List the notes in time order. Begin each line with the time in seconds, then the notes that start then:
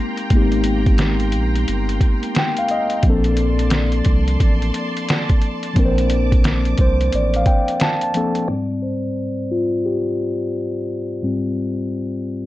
Already playing: G#3 A#3 C4 D#4 G4 G5 A#5 C6
0.17 closed hi-hat
0.30 G#1 G#3 A#3 B3, kick, closed hi-hat
0.35 D#4 G4
0.40 C4
0.52 closed hi-hat
0.64 closed hi-hat
0.86 kick, closed hi-hat
0.98 snare, closed hi-hat
1.20 closed hi-hat
1.32 A#1, closed hi-hat
1.56 closed hi-hat
1.68 G1, closed hi-hat
1.89 closed hi-hat
2.01 kick, closed hi-hat
2.23 closed hi-hat
2.35 G5, snare, closed hi-hat
2.57 F5, closed hi-hat
2.68 D#5, closed hi-hat
2.90 closed hi-hat
3.03 A#1 F3 A#3 D5 A5 C6, kick, closed hi-hat
3.07 C4 D4 A4
3.24 closed hi-hat
3.37 closed hi-hat
3.59 closed hi-hat
3.70 snare, closed hi-hat
3.92 closed hi-hat
4.05 C2, kick, closed hi-hat
4.28 closed hi-hat
4.40 A1, kick, closed hi-hat
4.62 closed hi-hat
4.74 closed hi-hat
4.97 closed hi-hat
5.09 snare, closed hi-hat
5.29 kick, closed hi-hat
5.42 closed hi-hat
5.63 closed hi-hat
5.74 A#1 F3 A#3 C4 D6, kick, closed hi-hat
5.78 D4 A#4
5.85 C5
5.98 closed hi-hat
6.10 closed hi-hat
6.32 kick, closed hi-hat
6.44 snare, closed hi-hat
6.65 closed hi-hat
6.78 C2 C5, kick, closed hi-hat
7.01 closed hi-hat
7.12 A1 D5, closed hi-hat
7.34 F5, closed hi-hat
7.46 G5, kick, closed hi-hat
7.68 closed hi-hat
7.80 A5, snare, closed hi-hat
8.01 A5, closed hi-hat
8.14 F3 A#3 C4 D4 A4, closed hi-hat
8.35 closed hi-hat
8.48 G#2 G3 C4 D5
8.82 C5
9.51 F4
9.86 G4
11.22 G#2 G3 C4